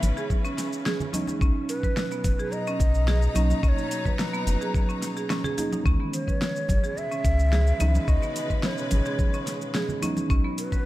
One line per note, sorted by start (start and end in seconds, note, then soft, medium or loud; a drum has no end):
0.00 0.12 G#1 medium
0.00 1.41 C#3 medium
0.00 1.12 E3 loud
0.00 1.41 E3 medium
0.00 1.13 G#3 medium
0.00 1.14 B3 medium
0.00 1.11 C#4 medium
0.00 2.31 C#4 medium
0.00 1.15 D#4 loud
0.00 1.41 B4 medium
0.00 0.31 E5 loud
0.00 open hi-hat medium
0.00 muted conga soft
0.00 high conga medium
0.00 shaker medium
0.17 0.30 G#4 medium
0.17 shaker soft
0.30 kick loud
0.30 high conga medium
0.30 shaker soft
0.45 0.57 C#4 medium
0.45 shaker soft
0.58 snare soft
0.58 open hi-hat medium
0.58 shaker medium
0.73 shaker soft
0.86 0.99 G#4 loud
0.86 snare loud
0.86 shaker soft
1.00 low conga medium
1.00 shaker soft
1.12 1.38 E3 loud
1.12 1.38 G#3 medium
1.12 1.38 B3 medium
1.12 1.27 C#4 medium
1.12 1.39 D#4 loud
1.12 open hi-hat medium
1.12 high conga medium
1.12 shaker medium
1.27 muted conga medium
1.27 shaker soft
1.39 1.50 B1 loud
1.39 5.86 B2 medium
1.39 3.31 F#3 medium
1.39 1.55 C#4 loud
1.39 3.33 C#4 medium
1.39 kick loud
1.39 shaker soft
1.43 3.34 D#4 medium
1.69 2.54 B4 loud
1.69 open hi-hat medium
1.69 shaker medium
1.83 5.86 F#3 medium
1.83 1.96 B4 medium
1.83 kick medium
1.83 high conga medium
1.83 shaker soft
1.97 snare loud
1.97 shaker soft
2.12 2.24 B3 medium
2.12 shaker soft
2.24 2.34 F#1 medium
2.24 kick loud
2.24 open hi-hat medium
2.24 muted conga soft
2.24 high conga medium
2.24 shaker medium
2.39 2.52 G#4 medium
2.39 shaker soft
2.48 5.86 A#5 medium
2.48 muted conga soft
2.52 3.63 D#5 loud
2.52 shaker soft
2.67 2.80 C#4 medium
2.67 shaker soft
2.79 3.28 B1 loud
2.79 5.86 D#4 medium
2.79 kick loud
2.79 open hi-hat medium
2.79 low conga medium
2.79 shaker medium
2.95 shaker soft
3.08 3.22 G#4 medium
3.08 snare loud
3.08 shaker soft
3.22 shaker soft
3.34 3.54 B1 medium
3.34 3.60 F#3 loud
3.34 3.60 A#3 medium
3.34 3.49 C#4 medium
3.34 3.60 C#4 medium
3.34 3.61 D#4 loud
3.34 open hi-hat medium
3.34 muted conga medium
3.34 high conga medium
3.34 shaker medium
3.50 muted conga medium
3.50 shaker soft
3.61 3.72 B1 loud
3.61 5.54 F#3 medium
3.61 3.77 C#4 loud
3.61 5.55 C#4 medium
3.61 3.69 D#5 loud
3.61 kick loud
3.61 shaker soft
3.65 5.56 D#4 medium
3.65 4.21 C#5 loud
3.78 shaker soft
3.91 open hi-hat medium
3.91 shaker medium
4.05 4.18 B4 medium
4.05 kick medium
4.05 high conga medium
4.05 low conga medium
4.05 shaker soft
4.19 5.30 B4 medium
4.19 snare loud
4.19 shaker soft
4.33 4.46 B3 medium
4.33 shaker soft
4.46 4.56 F#1 medium
4.46 open hi-hat medium
4.46 muted conga medium
4.46 high conga medium
4.46 shaker medium
4.61 4.74 G#4 medium
4.61 shaker soft
4.74 kick loud
4.74 high conga medium
4.74 shaker soft
4.89 5.02 C#4 medium
4.89 shaker soft
5.02 snare soft
5.02 open hi-hat medium
5.02 shaker medium
5.17 5.30 G#4 medium
5.17 shaker soft
5.30 5.44 C#4 medium
5.30 snare loud
5.30 shaker soft
5.44 5.57 G#4 loud
5.44 low conga medium
5.44 shaker soft
5.57 5.82 F#3 loud
5.57 5.82 A#3 medium
5.57 5.83 C#4 loud
5.57 5.83 D#4 loud
5.57 5.72 G#4 medium
5.57 open hi-hat medium
5.57 high conga medium
5.57 shaker medium
5.72 5.84 D#4 medium
5.72 muted conga medium
5.72 shaker soft
5.83 5.95 C#2 loud
5.83 10.31 C#3 medium
5.83 7.78 D#3 medium
5.83 7.76 E3 medium
5.83 7.77 G#3 medium
5.83 7.77 B3 medium
5.83 6.00 C#4 loud
5.83 kick loud
5.83 shaker soft
6.00 6.13 B3 medium
6.13 6.27 C5 loud
6.13 open hi-hat medium
6.13 shaker medium
6.27 6.41 B4 medium
6.27 6.99 C#5 loud
6.27 kick medium
6.27 high conga medium
6.27 shaker soft
6.42 snare loud
6.42 shaker soft
6.47 10.30 G#3 medium
6.56 shaker soft
6.63 10.29 B2 medium
6.69 6.78 G#1 medium
6.69 kick loud
6.69 open hi-hat medium
6.69 muted conga soft
6.69 high conga medium
6.69 shaker medium
6.84 6.96 G#4 medium
6.84 shaker soft
6.97 8.10 E5 loud
6.97 muted conga soft
6.97 shaker soft
7.11 7.24 C#4 medium
7.11 shaker soft
7.24 7.72 C#2 loud
7.24 kick loud
7.24 open hi-hat medium
7.24 low conga medium
7.24 shaker medium
7.39 shaker soft
7.53 7.66 G#4 loud
7.53 10.30 B4 medium
7.53 snare loud
7.53 shaker soft
7.67 shaker soft
7.79 7.98 C#2 medium
7.79 8.04 E3 loud
7.79 8.05 G#3 medium
7.79 8.05 B3 medium
7.79 7.94 C#4 medium
7.79 8.05 D#4 loud
7.79 open hi-hat medium
7.79 muted conga medium
7.79 high conga medium
7.79 shaker medium
7.95 muted conga medium
7.95 shaker soft
8.06 8.17 C#2 loud
8.06 9.98 E3 medium
8.06 9.99 G#3 medium
8.06 10.00 B3 medium
8.06 8.22 C#4 medium
8.06 10.00 C#4 medium
8.06 8.66 D#5 loud
8.06 kick loud
8.06 shaker soft
8.23 8.35 B3 medium
8.23 shaker soft
8.36 open hi-hat medium
8.36 shaker medium
8.50 8.63 B4 medium
8.50 kick medium
8.50 low conga medium
8.50 shaker soft
8.63 9.75 C#5 medium
8.63 snare loud
8.63 shaker soft
8.78 shaker soft
8.91 9.01 G#1 medium
8.91 open hi-hat medium
8.91 muted conga medium
8.91 high conga medium
8.91 shaker medium
9.06 9.19 G#4 medium
9.06 shaker soft
9.19 kick loud
9.19 high conga medium
9.19 shaker soft
9.34 9.46 C#4 medium
9.34 shaker soft
9.47 snare soft
9.47 open hi-hat medium
9.47 shaker medium
9.62 shaker soft
9.75 9.88 G#4 medium
9.75 snare medium
9.75 shaker soft
9.89 low conga medium
9.89 shaker soft
10.01 10.26 E3 loud
10.01 10.27 G#3 medium
10.01 10.27 B3 medium
10.01 10.16 C#4 medium
10.01 10.27 D#4 loud
10.01 open hi-hat medium
10.01 high conga medium
10.01 shaker medium
10.17 muted conga medium
10.17 shaker soft
10.28 10.39 B1 loud
10.28 10.86 B2 medium
10.28 10.86 F#3 medium
10.28 10.44 C#4 loud
10.28 10.86 C#4 medium
10.28 10.86 D#4 medium
10.28 kick loud
10.28 shaker soft
10.44 10.57 B3 medium
10.58 10.86 F#3 medium
10.58 10.86 B4 loud
10.58 open hi-hat medium
10.58 shaker medium
10.72 10.85 B4 medium
10.72 kick medium
10.72 high conga medium
10.72 shaker soft